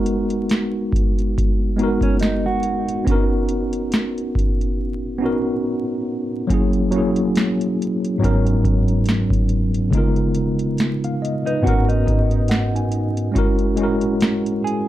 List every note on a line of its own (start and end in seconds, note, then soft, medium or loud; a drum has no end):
0.00 0.97 G#3 medium
0.00 0.98 B3 medium
0.00 0.99 D#4 medium
0.00 0.99 F#4 medium
0.00 1.00 A#4 medium
0.06 closed hi-hat medium
0.30 closed hi-hat soft
0.49 snare loud
0.49 closed hi-hat medium
0.93 kick loud
0.93 closed hi-hat medium
1.19 closed hi-hat soft
1.38 kick medium
1.38 closed hi-hat medium
1.76 2.80 G#3 medium
1.76 2.81 B3 medium
1.76 2.81 D#4 medium
1.76 closed hi-hat soft
1.82 2.82 F#4 medium
1.82 2.83 A#4 loud
2.01 2.20 C#4 medium
2.01 kick medium
2.01 closed hi-hat soft
2.19 2.45 D#4 medium
2.19 snare loud
2.19 closed hi-hat medium
2.46 3.04 F#4 medium
2.63 closed hi-hat medium
2.88 closed hi-hat medium
3.04 4.40 B3 medium
3.04 4.41 C#4 medium
3.04 3.15 D4 medium
3.04 kick loud
3.04 closed hi-hat medium
3.10 4.42 F#4 medium
3.10 4.43 A#4 loud
3.14 4.45 D#4 medium
3.49 closed hi-hat medium
3.73 closed hi-hat medium
3.92 snare loud
3.92 closed hi-hat medium
4.18 closed hi-hat soft
4.35 kick medium
4.35 closed hi-hat medium
4.61 closed hi-hat soft
5.18 6.22 B3 medium
5.18 6.23 C#4 medium
5.18 6.24 D#4 medium
5.24 6.25 F#4 medium
5.24 6.26 A#4 medium
6.47 6.83 F#3 medium
6.47 6.84 A#3 medium
6.47 6.85 C#4 medium
6.47 kick medium
6.47 closed hi-hat medium
6.52 6.86 E4 medium
6.52 6.87 G#4 loud
6.73 closed hi-hat soft
6.91 8.19 F#3 medium
6.91 8.21 A#3 medium
6.91 8.21 C#4 medium
6.91 closed hi-hat medium
6.96 8.23 E4 medium
6.96 8.24 G#4 medium
7.16 closed hi-hat soft
7.36 snare loud
7.36 closed hi-hat medium
7.61 closed hi-hat soft
7.82 closed hi-hat medium
8.05 closed hi-hat soft
8.18 9.58 G#2 medium
8.18 9.59 F#3 medium
8.18 9.60 B3 medium
8.22 9.60 C#4 medium
8.22 9.61 D#4 medium
8.22 9.62 A#4 loud
8.22 kick medium
8.22 closed hi-hat medium
8.47 closed hi-hat medium
8.65 kick medium
8.65 closed hi-hat soft
8.88 closed hi-hat soft
9.06 snare loud
9.06 closed hi-hat medium
9.30 kick medium
9.30 closed hi-hat soft
9.49 closed hi-hat medium
9.74 closed hi-hat medium
9.91 10.26 C#3 medium
9.91 10.27 G#3 medium
9.91 10.28 B3 medium
9.91 kick loud
9.91 closed hi-hat medium
9.95 10.29 D#4 medium
9.95 10.29 F4 medium
9.95 10.30 A#4 medium
10.16 closed hi-hat soft
10.35 closed hi-hat medium
10.59 closed hi-hat soft
10.78 snare loud
10.78 closed hi-hat medium
11.04 11.21 F5 medium
11.04 closed hi-hat soft
11.22 11.45 D#5 medium
11.22 closed hi-hat medium
11.46 11.63 D#4 medium
11.46 11.87 B4 medium
11.46 closed hi-hat soft
11.62 13.01 G#2 medium
11.62 13.02 B3 medium
11.62 13.03 C#4 medium
11.62 11.87 F#4 medium
11.66 13.03 D#4 medium
11.66 13.04 F#4 medium
11.66 13.05 A#4 loud
11.66 kick medium
11.66 closed hi-hat medium
11.89 13.13 D#4 medium
11.89 closed hi-hat medium
12.06 12.46 D#5 medium
12.06 kick medium
12.06 closed hi-hat soft
12.31 closed hi-hat soft
12.48 12.73 F#5 medium
12.48 snare loud
12.48 closed hi-hat medium
12.76 13.32 G#5 medium
12.76 closed hi-hat soft
12.92 closed hi-hat medium
13.17 closed hi-hat medium
13.32 13.68 G#3 medium
13.32 13.69 C#4 medium
13.32 13.70 E4 medium
13.32 kick medium
13.36 13.71 F#4 medium
13.36 13.72 A#4 loud
13.36 closed hi-hat medium
13.59 closed hi-hat soft
13.76 14.88 G#3 medium
13.76 14.88 C#4 medium
13.76 14.88 E4 medium
13.76 closed hi-hat medium
13.82 14.88 F#4 medium
13.82 14.88 A#4 medium
14.01 closed hi-hat soft
14.21 snare loud
14.21 closed hi-hat medium
14.46 closed hi-hat soft
14.64 14.88 G#4 medium
14.64 closed hi-hat medium